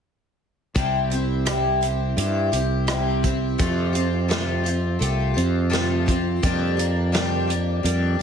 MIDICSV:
0, 0, Header, 1, 4, 480
1, 0, Start_track
1, 0, Key_signature, 0, "major"
1, 0, Tempo, 709220
1, 509, Time_signature, 4, 2, 24, 8
1, 5565, End_track
2, 0, Start_track
2, 0, Title_t, "Twelve-string acoustic guitar"
2, 0, Program_c, 0, 25
2, 505, Note_on_c, 0, 48, 66
2, 509, Note_on_c, 0, 55, 67
2, 513, Note_on_c, 0, 60, 65
2, 517, Note_on_c, 0, 64, 68
2, 519, Note_on_c, 0, 67, 77
2, 737, Note_off_c, 0, 67, 0
2, 745, Note_on_c, 0, 67, 49
2, 747, Note_off_c, 0, 48, 0
2, 747, Note_off_c, 0, 64, 0
2, 749, Note_off_c, 0, 55, 0
2, 751, Note_off_c, 0, 60, 0
2, 756, Note_on_c, 0, 64, 47
2, 765, Note_on_c, 0, 60, 43
2, 983, Note_off_c, 0, 60, 0
2, 984, Note_on_c, 0, 48, 63
2, 986, Note_on_c, 0, 55, 69
2, 987, Note_off_c, 0, 67, 0
2, 988, Note_off_c, 0, 64, 0
2, 991, Note_on_c, 0, 60, 70
2, 996, Note_on_c, 0, 64, 71
2, 998, Note_on_c, 0, 67, 74
2, 1216, Note_off_c, 0, 67, 0
2, 1224, Note_on_c, 0, 67, 49
2, 1226, Note_off_c, 0, 64, 0
2, 1227, Note_off_c, 0, 48, 0
2, 1228, Note_off_c, 0, 55, 0
2, 1230, Note_off_c, 0, 60, 0
2, 1234, Note_on_c, 0, 64, 42
2, 1243, Note_on_c, 0, 60, 38
2, 1466, Note_on_c, 0, 55, 51
2, 1467, Note_off_c, 0, 60, 0
2, 1467, Note_off_c, 0, 67, 0
2, 1472, Note_off_c, 0, 64, 0
2, 1475, Note_on_c, 0, 60, 51
2, 1480, Note_on_c, 0, 64, 62
2, 1485, Note_on_c, 0, 67, 66
2, 1695, Note_off_c, 0, 67, 0
2, 1704, Note_on_c, 0, 67, 48
2, 1706, Note_off_c, 0, 64, 0
2, 1708, Note_off_c, 0, 55, 0
2, 1713, Note_off_c, 0, 60, 0
2, 1714, Note_on_c, 0, 64, 40
2, 1724, Note_on_c, 0, 60, 38
2, 1942, Note_off_c, 0, 60, 0
2, 1942, Note_on_c, 0, 48, 69
2, 1945, Note_on_c, 0, 55, 73
2, 1946, Note_off_c, 0, 64, 0
2, 1947, Note_off_c, 0, 67, 0
2, 1950, Note_on_c, 0, 60, 64
2, 1954, Note_on_c, 0, 64, 70
2, 1958, Note_on_c, 0, 67, 72
2, 2177, Note_off_c, 0, 67, 0
2, 2185, Note_on_c, 0, 67, 45
2, 2186, Note_off_c, 0, 48, 0
2, 2186, Note_off_c, 0, 64, 0
2, 2188, Note_off_c, 0, 55, 0
2, 2190, Note_off_c, 0, 60, 0
2, 2194, Note_on_c, 0, 64, 41
2, 2204, Note_on_c, 0, 60, 42
2, 2422, Note_off_c, 0, 60, 0
2, 2424, Note_on_c, 0, 53, 68
2, 2426, Note_on_c, 0, 57, 63
2, 2428, Note_off_c, 0, 67, 0
2, 2430, Note_off_c, 0, 64, 0
2, 2430, Note_on_c, 0, 60, 71
2, 2432, Note_on_c, 0, 65, 70
2, 2439, Note_on_c, 0, 67, 72
2, 2650, Note_off_c, 0, 67, 0
2, 2658, Note_on_c, 0, 67, 51
2, 2663, Note_off_c, 0, 65, 0
2, 2667, Note_off_c, 0, 53, 0
2, 2668, Note_off_c, 0, 57, 0
2, 2669, Note_off_c, 0, 60, 0
2, 2672, Note_on_c, 0, 65, 45
2, 2677, Note_on_c, 0, 60, 45
2, 2899, Note_on_c, 0, 53, 69
2, 2900, Note_off_c, 0, 60, 0
2, 2901, Note_on_c, 0, 57, 68
2, 2902, Note_off_c, 0, 65, 0
2, 2902, Note_off_c, 0, 67, 0
2, 2908, Note_on_c, 0, 60, 69
2, 2910, Note_on_c, 0, 67, 69
2, 2911, Note_on_c, 0, 65, 68
2, 3129, Note_off_c, 0, 67, 0
2, 3137, Note_on_c, 0, 67, 50
2, 3140, Note_off_c, 0, 65, 0
2, 3145, Note_off_c, 0, 53, 0
2, 3146, Note_off_c, 0, 57, 0
2, 3148, Note_on_c, 0, 65, 46
2, 3149, Note_off_c, 0, 60, 0
2, 3159, Note_on_c, 0, 60, 38
2, 3377, Note_on_c, 0, 57, 56
2, 3378, Note_off_c, 0, 60, 0
2, 3383, Note_off_c, 0, 67, 0
2, 3386, Note_off_c, 0, 65, 0
2, 3387, Note_on_c, 0, 60, 53
2, 3394, Note_on_c, 0, 65, 56
2, 3396, Note_on_c, 0, 67, 61
2, 3606, Note_off_c, 0, 67, 0
2, 3614, Note_on_c, 0, 67, 43
2, 3618, Note_off_c, 0, 65, 0
2, 3623, Note_off_c, 0, 57, 0
2, 3624, Note_off_c, 0, 60, 0
2, 3626, Note_on_c, 0, 65, 38
2, 3632, Note_on_c, 0, 60, 39
2, 3854, Note_off_c, 0, 60, 0
2, 3855, Note_on_c, 0, 53, 73
2, 3857, Note_off_c, 0, 65, 0
2, 3857, Note_on_c, 0, 57, 71
2, 3858, Note_off_c, 0, 67, 0
2, 3862, Note_on_c, 0, 60, 69
2, 3865, Note_on_c, 0, 65, 69
2, 3866, Note_on_c, 0, 67, 75
2, 4093, Note_off_c, 0, 67, 0
2, 4101, Note_on_c, 0, 67, 48
2, 4102, Note_off_c, 0, 53, 0
2, 4103, Note_off_c, 0, 57, 0
2, 4103, Note_off_c, 0, 65, 0
2, 4106, Note_off_c, 0, 60, 0
2, 4111, Note_on_c, 0, 65, 47
2, 4123, Note_on_c, 0, 60, 46
2, 4345, Note_off_c, 0, 67, 0
2, 4348, Note_on_c, 0, 53, 76
2, 4350, Note_off_c, 0, 65, 0
2, 4351, Note_on_c, 0, 55, 80
2, 4352, Note_off_c, 0, 60, 0
2, 4355, Note_on_c, 0, 58, 68
2, 4358, Note_on_c, 0, 62, 69
2, 4361, Note_on_c, 0, 67, 77
2, 4573, Note_off_c, 0, 67, 0
2, 4581, Note_on_c, 0, 67, 57
2, 4583, Note_off_c, 0, 62, 0
2, 4589, Note_off_c, 0, 53, 0
2, 4589, Note_off_c, 0, 58, 0
2, 4590, Note_off_c, 0, 55, 0
2, 4592, Note_on_c, 0, 62, 45
2, 4598, Note_on_c, 0, 58, 43
2, 4819, Note_off_c, 0, 58, 0
2, 4820, Note_on_c, 0, 53, 65
2, 4822, Note_off_c, 0, 62, 0
2, 4825, Note_off_c, 0, 67, 0
2, 4826, Note_on_c, 0, 55, 72
2, 4827, Note_on_c, 0, 58, 68
2, 4830, Note_on_c, 0, 62, 76
2, 4833, Note_on_c, 0, 67, 76
2, 5050, Note_off_c, 0, 67, 0
2, 5059, Note_on_c, 0, 67, 48
2, 5061, Note_off_c, 0, 62, 0
2, 5065, Note_off_c, 0, 53, 0
2, 5067, Note_off_c, 0, 55, 0
2, 5068, Note_off_c, 0, 58, 0
2, 5070, Note_on_c, 0, 62, 43
2, 5078, Note_on_c, 0, 58, 39
2, 5300, Note_off_c, 0, 58, 0
2, 5300, Note_on_c, 0, 55, 54
2, 5304, Note_off_c, 0, 67, 0
2, 5305, Note_off_c, 0, 62, 0
2, 5308, Note_on_c, 0, 58, 55
2, 5313, Note_on_c, 0, 62, 58
2, 5320, Note_on_c, 0, 67, 64
2, 5534, Note_off_c, 0, 67, 0
2, 5542, Note_on_c, 0, 67, 49
2, 5544, Note_off_c, 0, 55, 0
2, 5546, Note_off_c, 0, 62, 0
2, 5548, Note_off_c, 0, 58, 0
2, 5565, Note_off_c, 0, 67, 0
2, 5565, End_track
3, 0, Start_track
3, 0, Title_t, "Fretless electric bass"
3, 0, Program_c, 1, 35
3, 511, Note_on_c, 1, 36, 77
3, 1444, Note_off_c, 1, 36, 0
3, 1467, Note_on_c, 1, 43, 80
3, 1691, Note_off_c, 1, 43, 0
3, 1708, Note_on_c, 1, 36, 73
3, 2402, Note_off_c, 1, 36, 0
3, 2433, Note_on_c, 1, 41, 79
3, 3365, Note_off_c, 1, 41, 0
3, 3388, Note_on_c, 1, 36, 80
3, 3611, Note_off_c, 1, 36, 0
3, 3634, Note_on_c, 1, 41, 69
3, 4324, Note_off_c, 1, 41, 0
3, 4354, Note_on_c, 1, 41, 83
3, 5284, Note_off_c, 1, 41, 0
3, 5307, Note_on_c, 1, 41, 82
3, 5530, Note_off_c, 1, 41, 0
3, 5565, End_track
4, 0, Start_track
4, 0, Title_t, "Drums"
4, 513, Note_on_c, 9, 36, 88
4, 514, Note_on_c, 9, 42, 69
4, 580, Note_off_c, 9, 36, 0
4, 582, Note_off_c, 9, 42, 0
4, 753, Note_on_c, 9, 42, 52
4, 821, Note_off_c, 9, 42, 0
4, 990, Note_on_c, 9, 42, 75
4, 994, Note_on_c, 9, 37, 85
4, 1058, Note_off_c, 9, 42, 0
4, 1061, Note_off_c, 9, 37, 0
4, 1235, Note_on_c, 9, 42, 57
4, 1302, Note_off_c, 9, 42, 0
4, 1474, Note_on_c, 9, 42, 68
4, 1542, Note_off_c, 9, 42, 0
4, 1711, Note_on_c, 9, 42, 54
4, 1779, Note_off_c, 9, 42, 0
4, 1947, Note_on_c, 9, 42, 67
4, 1950, Note_on_c, 9, 37, 86
4, 2015, Note_off_c, 9, 42, 0
4, 2018, Note_off_c, 9, 37, 0
4, 2192, Note_on_c, 9, 36, 68
4, 2192, Note_on_c, 9, 42, 51
4, 2259, Note_off_c, 9, 42, 0
4, 2260, Note_off_c, 9, 36, 0
4, 2431, Note_on_c, 9, 42, 67
4, 2433, Note_on_c, 9, 36, 91
4, 2499, Note_off_c, 9, 42, 0
4, 2501, Note_off_c, 9, 36, 0
4, 2673, Note_on_c, 9, 42, 52
4, 2741, Note_off_c, 9, 42, 0
4, 2915, Note_on_c, 9, 42, 62
4, 2918, Note_on_c, 9, 38, 97
4, 2983, Note_off_c, 9, 42, 0
4, 2986, Note_off_c, 9, 38, 0
4, 3154, Note_on_c, 9, 42, 52
4, 3221, Note_off_c, 9, 42, 0
4, 3396, Note_on_c, 9, 42, 62
4, 3463, Note_off_c, 9, 42, 0
4, 3638, Note_on_c, 9, 42, 50
4, 3706, Note_off_c, 9, 42, 0
4, 3878, Note_on_c, 9, 42, 65
4, 3881, Note_on_c, 9, 38, 90
4, 3946, Note_off_c, 9, 42, 0
4, 3949, Note_off_c, 9, 38, 0
4, 4115, Note_on_c, 9, 36, 75
4, 4117, Note_on_c, 9, 42, 52
4, 4183, Note_off_c, 9, 36, 0
4, 4184, Note_off_c, 9, 42, 0
4, 4354, Note_on_c, 9, 36, 94
4, 4354, Note_on_c, 9, 42, 71
4, 4422, Note_off_c, 9, 36, 0
4, 4422, Note_off_c, 9, 42, 0
4, 4596, Note_on_c, 9, 42, 55
4, 4664, Note_off_c, 9, 42, 0
4, 4836, Note_on_c, 9, 42, 69
4, 4839, Note_on_c, 9, 38, 91
4, 4903, Note_off_c, 9, 42, 0
4, 4907, Note_off_c, 9, 38, 0
4, 5076, Note_on_c, 9, 42, 55
4, 5143, Note_off_c, 9, 42, 0
4, 5314, Note_on_c, 9, 42, 65
4, 5382, Note_off_c, 9, 42, 0
4, 5565, End_track
0, 0, End_of_file